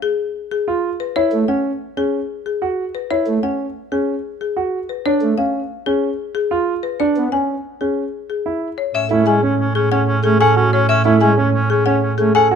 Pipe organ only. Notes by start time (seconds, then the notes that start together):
1.32 A3
3.27 A3
5.22 A3
7.16 B3
9.11 A3
9.27 G#3
10.24 A3
11.06 A3
11.22 G#3
12.19 A3